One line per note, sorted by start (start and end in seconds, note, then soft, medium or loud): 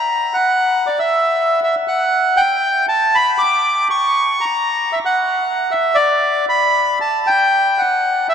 0.00 0.36 A#5 medium
0.34 0.88 F#5 medium
0.87 0.99 D5 medium
0.99 1.60 E5 medium
1.64 1.75 E5 medium
1.88 2.41 F#5 medium
2.37 2.86 G5 medium
2.89 3.16 A5 medium
3.15 3.42 B5 medium
3.38 3.88 D6 medium
3.90 4.45 C#6 medium
4.41 4.95 A#5 medium
4.92 4.99 E5 medium
5.05 5.73 F#5 medium
5.71 5.96 E5 medium
5.95 6.45 D5 medium
6.49 6.99 B5 medium
7.01 7.29 A5 medium
7.27 7.81 G5 medium
7.78 8.27 F#5 medium
8.29 8.35 E5 medium